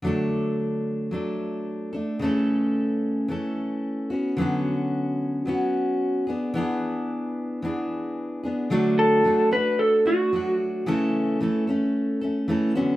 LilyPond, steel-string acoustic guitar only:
\new Staff \with { instrumentName = "Steel-string acoustic guitar" } { \time 4/4 \key a \major \tempo 4 = 111 <d fis a d' a'>2 <fis a d' a'>4. <a d' a'>8 | <cis e a cis' a'>2 <e a cis' a'>4. <b cis' fis'>8 | <d fis b cis' fis'>2 <fis b cis' fis'>4. <b d' gis'>8 | <e b d' gis'>2 <e b d' gis'>4. <b d' gis'>8 |
<d fis a d' fis'>4 <fis a d' fis'>8 <a d' fis'>4 <a d' fis'>8 <fis a d' fis'>4 | <cis e a cis' a'>4 <e a cis' a'>8 <a cis' a'>4 <a cis' a'>8 <e a cis' a'>8 <d fis b cis' fis'>8 | }